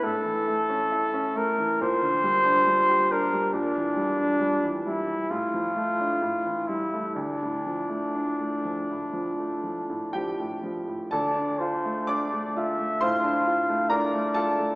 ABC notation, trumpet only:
X:1
M:4/4
L:1/8
Q:1/4=67
K:Dm
V:1 name="Trumpet"
A3 B c3 B | D3 E F3 E | D6- D z | d c d e f2 d2 |]